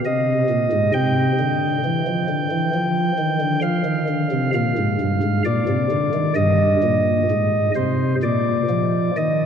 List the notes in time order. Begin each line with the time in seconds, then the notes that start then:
0.05 C3 D#5
0.49 A#2
0.72 G#2
0.93 C3 G5
1.40 D3
1.84 E3
2.07 F3
2.29 D3
2.51 E3
2.74 F3
3.18 D#3
3.40 D3
3.62 F3 F5
3.85 D#3
4.08 D3
4.31 C3
4.54 A#2 F5
4.77 G#2
5.00 G2
5.22 G#2
5.45 A#2 D5
5.68 C3
5.91 D3
6.14 D#3
6.36 G2 D#5
6.83 A#2
7.30 G#2
7.75 C3 C5
8.22 A#2 D5
8.69 F3
9.17 D#3 D#5